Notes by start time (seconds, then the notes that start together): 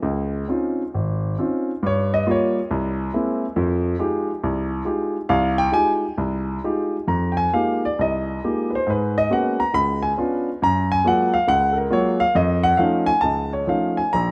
0.03 C#2
0.48 C4 C#4 D#4 F4
0.94 G#1
1.38 C4 C#4 D#4 F4
1.83 G2 C#5
2.14 D#5
2.26 G3 A#3 F4
2.31 C#5
2.71 C2
3.14 G#3 A#3 C4 E4
3.56 F2 F3
3.99 G#3 D#4 F4 G4
4.43 C2
4.85 G#3 D#4 F4 G4
5.29 C2 F5
5.58 G5
5.72 G#3 D#4 F4 G4 G#5
6.18 C2
6.64 G#3 D#4 F4 G4
7.08 F2 A#5
7.32 G5
7.37 G#5
7.53 G#3 A#3 D#4 F4 G4 F5
7.85 D5
7.99 C2 D#5
8.44 G#3 A#3 D#4 F4 G4
8.70 B4
8.75 C5
8.87 G#2 G#3 B4
9.18 D#5
9.30 G#3 A#3 B3 C#4 F#4 F#5
9.60 A#5
9.74 C#2 B5
10.03 G#5
10.18 B3 C#4 D4 F4
10.62 F#2 A#5
10.92 G#5
11.04 F#3 G#3 A#3 F4 F#5
11.34 F5
11.48 C#2 F#5
11.72 A4
11.78 A#4
11.90 F#3 G#3 A#3 F4 C#5
12.20 F5
12.35 F2 D#5
12.63 F#5
12.77 F3 A3 C#4 D#4 F5
13.06 G#5
13.21 C#2 A5
13.53 C#5
13.67 F3 A3 C#4 D#4 F5
13.97 G#5
14.13 A#1 A#5